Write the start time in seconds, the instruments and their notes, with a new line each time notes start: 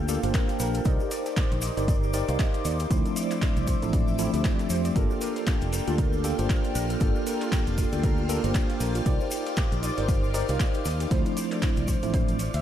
Already playing: fingered electric bass D2, analog synth pad A4 F5 G5
0.08 tine electric piano A#3 D4 F4 G4 A4, synth pluck D5, closed hi-hat, open hi-hat, maracas
0.23 fingered electric bass G1, tine electric piano A#3 D4 F4 G4 C5, synth pluck F4, closed hi-hat, maracas
0.34 synth pluck A#4, kick, snare, clap, closed hi-hat, maracas
0.49 synth pluck F4, snare, closed hi-hat, maracas
0.59 fingered electric bass A#1, synth pluck A#4, snare, closed hi-hat, open hi-hat, maracas
0.74 synth pluck A4, closed hi-hat, maracas
0.85 fingered electric bass C2, tine electric piano D#4 G4 A#4 C5 D5, analog synth pad D#4 C5 D6, synth pluck D#5, kick, closed hi-hat, maracas
1.00 synth pluck G4, maracas
1.11 synth pluck D5, closed hi-hat, open hi-hat, maracas
1.26 synth pluck G4, snare, closed hi-hat, maracas
1.37 synth pluck D5, kick, snare, clap, closed hi-hat, maracas
1.52 fingered electric bass A#1, synth pluck C5, closed hi-hat, maracas
1.61 synth pluck D#5, closed hi-hat, open hi-hat, maracas
1.77 fingered electric bass G1, tine electric piano D#4 G4 A#4 C5 D5, synth pluck G4, closed hi-hat, maracas
1.88 synth pluck D5, kick, closed hi-hat, maracas
2.03 synth pluck G4, maracas
2.13 tine electric piano D#4 G4 A#4 C5 D5, synth pluck D5, closed hi-hat, open hi-hat, maracas
2.28 fingered electric bass C2, tine electric piano D#4 G4 A#4 C5 F5, synth pluck C5, closed hi-hat, maracas
2.39 synth pluck D#5, kick, snare, clap, closed hi-hat, maracas
2.54 synth pluck G4, closed hi-hat, maracas
2.65 fingered electric bass D#2, synth pluck D5, closed hi-hat, open hi-hat, maracas
2.79 synth pluck G4, closed hi-hat, maracas
2.90 fingered electric bass D2, tine electric piano F3 A3 C4 D4 E4, synth pluck C5, analog synth pad D5 E5 D6, kick, closed hi-hat, maracas
3.05 synth pluck A4, closed hi-hat, maracas
3.16 synth pluck D5, closed hi-hat, open hi-hat, maracas
3.31 synth pluck E4, clap, closed hi-hat, maracas
3.42 synth pluck C5, kick, snare, clap, closed hi-hat, maracas
3.57 fingered electric bass C2, synth pluck E4, closed hi-hat, maracas
3.67 synth pluck C5, kick, closed hi-hat, open hi-hat, maracas
3.82 fingered electric bass A1, tine electric piano F3 A3 C4 D4 E4, synth pluck A4, closed hi-hat, maracas
3.93 synth pluck D5, kick, closed hi-hat, maracas
4.08 synth pluck E4, maracas
4.19 tine electric piano F3 A3 C4 D4 E4, synth pluck E4, closed hi-hat, open hi-hat, maracas
4.33 fingered electric bass D2, tine electric piano F3 A3 C4 D4 G4, synth pluck D5, closed hi-hat, maracas
4.44 synth pluck E4, kick, snare, clap, closed hi-hat, maracas
4.59 synth pluck A4, snare, closed hi-hat, maracas
4.70 fingered electric bass F2, synth pluck C5, snare, closed hi-hat, open hi-hat, maracas
4.85 synth pluck D5, closed hi-hat, maracas
4.95 fingered electric bass G1, tine electric piano A#3 D4 F4 G4 A4, string machine F4 F6, analog synth pad A4 G5, synth pluck A#4, kick, closed hi-hat, maracas
5.10 synth pluck F4, maracas
5.21 synth pluck A#4, closed hi-hat, open hi-hat, maracas
5.36 synth pluck A4, snare, closed hi-hat, maracas
5.47 synth pluck F4, kick, snare, clap, closed hi-hat, maracas
5.61 fingered electric bass F1, synth pluck F4, closed hi-hat, maracas
5.73 synth pluck A#4, closed hi-hat, open hi-hat, maracas
5.87 fingered electric bass D2, tine electric piano A#3 D4 F4 G4 A4, synth pluck F4, closed hi-hat, maracas
5.98 synth pluck A#4, kick, closed hi-hat, maracas
6.13 synth pluck A4, maracas
6.24 tine electric piano A#3 D4 F4 G4 A4, synth pluck F4, closed hi-hat, open hi-hat, maracas
6.38 fingered electric bass G1, tine electric piano A#3 D4 F4 G4 C5, synth pluck F4, closed hi-hat, maracas
6.50 synth pluck A#4, kick, snare, clap, closed hi-hat, maracas
6.64 synth pluck F4, closed hi-hat, maracas
6.75 fingered electric bass A#1, synth pluck A#4, closed hi-hat, open hi-hat, maracas
6.90 synth pluck A4, closed hi-hat, maracas
7.00 fingered electric bass G1, tine electric piano A#3 D4 F4 G4 A4, synth pluck F4, kick, closed hi-hat, maracas
7.16 synth pluck F4, maracas
7.27 synth pluck A#4, closed hi-hat, open hi-hat, maracas
7.41 synth pluck F4, clap, closed hi-hat, maracas
7.52 synth pluck A#4, kick, snare, clap, closed hi-hat, maracas
7.67 fingered electric bass F1, synth pluck A4, closed hi-hat, maracas
7.78 synth pluck F4, kick, closed hi-hat, open hi-hat, maracas
7.92 fingered electric bass D2, tine electric piano A#3 D4 F4 G4 A4, synth pluck F4, closed hi-hat, maracas
8.03 synth pluck A#4, kick, closed hi-hat, maracas
8.17 synth pluck F4, maracas
8.29 tine electric piano A#3 D4 F4 G4 A4, synth pluck A#4, closed hi-hat, open hi-hat, maracas
8.43 fingered electric bass G1, tine electric piano A#3 D4 F4 G4 C5, synth pluck A4, closed hi-hat, maracas
8.55 synth pluck F4, kick, snare, clap, closed hi-hat, maracas
8.69 synth pluck F4, snare, closed hi-hat, maracas
8.80 fingered electric bass A#1, synth pluck A#4, snare, closed hi-hat, open hi-hat, maracas
8.95 synth pluck F4, closed hi-hat, maracas
9.05 fingered electric bass C2, tine electric piano D#4 G4 A#4 C5 D5, analog synth pad D#4 C5 D6, synth pluck D5, kick, closed hi-hat, maracas
9.20 synth pluck C5, maracas
9.31 synth pluck G4, closed hi-hat, open hi-hat, maracas
9.46 synth pluck G4, snare, closed hi-hat, maracas
9.57 synth pluck D5, kick, snare, clap, closed hi-hat, maracas
9.72 fingered electric bass A#1, synth pluck G4, closed hi-hat, maracas
9.83 synth pluck D5, closed hi-hat, open hi-hat, maracas
9.97 fingered electric bass G1, tine electric piano D#4 G4 A#4 C5 D5, synth pluck C5, closed hi-hat, maracas
10.08 synth pluck G4, kick, closed hi-hat, maracas
10.23 synth pluck G4, maracas
10.34 tine electric piano D#4 G4 A#4 C5 D5, synth pluck D5, closed hi-hat, open hi-hat, maracas
10.48 fingered electric bass C2, tine electric piano D#4 G4 A#4 C5 F5, synth pluck G4, closed hi-hat, maracas
10.60 synth pluck D5, kick, snare, clap, closed hi-hat, maracas
10.74 synth pluck C5, closed hi-hat, maracas
10.85 fingered electric bass D#2, synth pluck G4, snare, closed hi-hat, open hi-hat, maracas
11.00 synth pluck G4, closed hi-hat, maracas
11.10 fingered electric bass D2, tine electric piano F3 A3 C4 D4 E4, synth pluck C5, analog synth pad D5, kick, snare, closed hi-hat, maracas
11.26 synth pluck E4, closed hi-hat, maracas
11.37 synth pluck C5, closed hi-hat, open hi-hat, maracas
11.52 synth pluck A4, clap, closed hi-hat, maracas
11.62 synth pluck E4, kick, snare, clap, closed hi-hat, maracas
11.77 fingered electric bass C2, synth pluck E4, closed hi-hat, maracas
11.88 synth pluck C5, kick, closed hi-hat, open hi-hat, maracas
12.03 fingered electric bass A1, tine electric piano F3 A3 C4 D4 E4, synth pluck E4, closed hi-hat, maracas
12.14 synth pluck C5, kick, closed hi-hat, maracas
12.28 synth pluck A4, closed hi-hat, maracas
12.39 synth pluck C5, closed hi-hat, open hi-hat, maracas
12.54 fingered electric bass D2, synth pluck E5, closed hi-hat, maracas